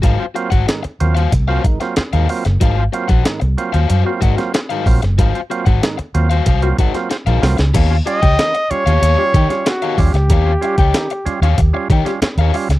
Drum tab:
CC |----------------|----------------|----------------|x---------------|
HH |x-xxxxxxx-xxxxox|x-xxxxxxx-xxxxox|xxxxxxxxxxxxxxox|x-xxxxxxx-xxxxox|
SD |----o------oo--o|----o------oo--o|----o------oo-oo|----o------oo--o|
BD |o--o----o-o-----|o--o------o---o-|o--o----o-o-----|o--o------o---o-|

CC |----------------|
HH |x-xxxxxxx-xxxxox|
SD |----o------oo--o|
BD |o--o----o-o-----|